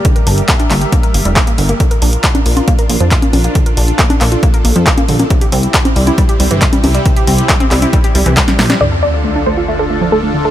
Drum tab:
HH |xxoxxxoxxxoxxxox|xxoxxxoxxxoxxxox|xxoxxxoxxxoxxxox|xxoxxxoxxxoxxxox|
CP |----x-x-----x---|----x-------x---|----x-x-----x---|----x-------x---|
SD |----------------|----------------|----------------|----------------|
CG |----------------|-----o-o-----oo-|-----o-------o-o|-----o-o-----oo-|
BD |o---o---o---o---|o---o---o---o---|o---o---o---o---|o---o---o---o---|

HH |xxoxxxoxxxoxxxox|----------------|
CP |----x-x-----x---|----------------|
SD |------------oooo|----------------|
CG |-----o-o-----o-o|----------------|
BD |o---o---o---o---|----------------|